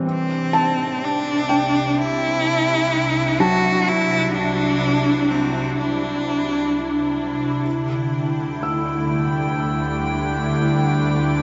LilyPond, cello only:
\new Staff \with { instrumentName = "Cello" } { \time 4/4 \key c \lydian \tempo 4 = 63 c'4 d'4 e'4. fis'8 | e'8 d'4 c'8 d'4. r8 | r1 | }